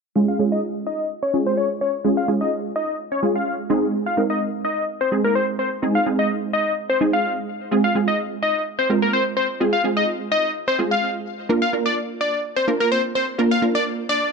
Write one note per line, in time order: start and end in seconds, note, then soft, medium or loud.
0.16 0.31 G#3 medium
0.16 0.31 C#4 medium
0.16 0.31 F4 medium
0.16 0.31 G#4 medium
0.28 0.37 F5 medium
0.39 0.97 G#3 medium
0.39 0.97 C#4 medium
0.39 0.97 F4 medium
0.39 0.98 G#4 medium
0.52 0.61 D#5 medium
0.87 1.06 D#5 medium
1.23 1.32 C#5 medium
1.33 1.77 G#3 medium
1.33 1.77 C#4 medium
1.33 1.77 F4 medium
1.33 1.77 G#4 medium
1.47 1.56 C5 medium
1.58 1.68 C#5 medium
1.81 1.91 C#5 medium
2.04 2.19 G#3 medium
2.04 2.20 C#4 medium
2.04 2.20 F4 medium
2.04 2.20 G#4 medium
2.17 2.26 F5 medium
2.28 2.86 G#3 medium
2.28 2.86 C#4 medium
2.28 2.86 F4 medium
2.28 2.86 G#4 medium
2.41 2.50 D#5 medium
2.76 2.95 D#5 medium
3.12 3.21 C#5 medium
3.22 3.66 G#3 medium
3.22 3.66 C#4 medium
3.22 3.66 F4 medium
3.22 3.66 G#4 medium
3.36 3.55 F5 medium
3.70 4.08 G#3 medium
3.70 4.08 C4 medium
3.70 4.08 D#4 medium
3.70 4.08 G#4 loud
4.06 4.15 F5 medium
4.17 4.75 G#3 medium
4.17 4.75 C4 medium
4.17 4.75 D#4 medium
4.17 4.75 A#4 medium
4.30 4.39 D#5 medium
4.65 4.84 D#5 medium
5.01 5.10 C5 medium
5.12 5.55 G#3 medium
5.12 5.55 C4 medium
5.12 5.55 D#4 medium
5.12 5.55 G#4 medium
5.24 5.34 A#4 medium
5.35 5.46 C5 medium
5.59 5.69 C5 medium
5.82 5.97 G#3 medium
5.82 5.98 C4 medium
5.82 5.98 D#4 medium
5.82 5.98 G#4 medium
5.95 6.04 F5 medium
6.06 6.64 G#3 medium
6.06 6.64 C4 medium
6.06 6.64 D#4 medium
6.06 6.64 G#4 medium
6.19 6.28 D#5 medium
6.53 6.73 D#5 medium
6.90 6.99 C5 medium
7.00 7.44 G#3 medium
7.00 7.44 C4 medium
7.00 7.44 D#4 medium
7.00 7.44 G#4 medium
7.13 7.33 F5 medium
7.71 7.86 G#3 medium
7.71 7.87 C4 medium
7.71 7.87 F4 medium
7.71 7.87 G#4 medium
7.84 7.93 F5 medium
7.95 8.53 G#3 medium
7.95 8.53 C4 medium
7.95 8.53 F4 medium
7.95 8.53 G#4 medium
8.08 8.17 D#5 medium
8.43 8.62 D#5 medium
8.79 8.88 C5 medium
8.90 9.33 G#3 medium
8.90 9.33 C4 medium
8.90 9.33 F4 medium
8.90 9.33 A#4 medium
9.02 9.11 A#4 medium
9.13 9.24 C5 medium
9.37 9.47 C5 medium
9.60 9.75 G#3 medium
9.60 9.75 C4 medium
9.60 9.76 F4 medium
9.60 9.76 G#4 medium
9.73 9.82 F5 medium
9.84 10.42 G#3 medium
9.84 10.42 C4 medium
9.84 10.42 F4 medium
9.84 10.42 G#4 medium
9.97 10.06 D#5 medium
10.32 10.51 D#5 medium
10.68 10.77 C5 medium
10.78 11.22 G#3 medium
10.78 11.22 C4 medium
10.78 11.22 F4 medium
10.78 11.22 G#4 medium
10.91 11.11 F5 medium
11.49 11.64 A#3 medium
11.49 11.64 D4 medium
11.49 11.64 F4 medium
11.49 11.65 A#4 medium
11.62 11.71 F5 medium
11.73 12.31 A#3 medium
11.73 12.31 D4 medium
11.73 12.31 F4 medium
11.73 12.31 A#4 medium
11.86 11.95 D5 medium
12.21 12.40 D5 medium
12.56 12.66 C5 medium
12.67 13.11 A#3 medium
12.67 13.11 D4 medium
12.67 13.11 F4 medium
12.67 13.11 A#4 medium
12.80 12.89 A#4 medium
12.92 13.02 C5 medium
13.15 13.25 C5 medium
13.38 13.53 A#3 medium
13.38 13.53 D4 medium
13.38 13.54 F4 medium
13.38 13.54 A#4 medium
13.51 13.60 F5 medium
13.62 14.20 A#3 medium
13.62 14.20 D4 medium
13.62 14.20 F4 medium
13.62 14.20 A#4 medium
13.75 13.84 D5 medium
14.09 14.29 D5 medium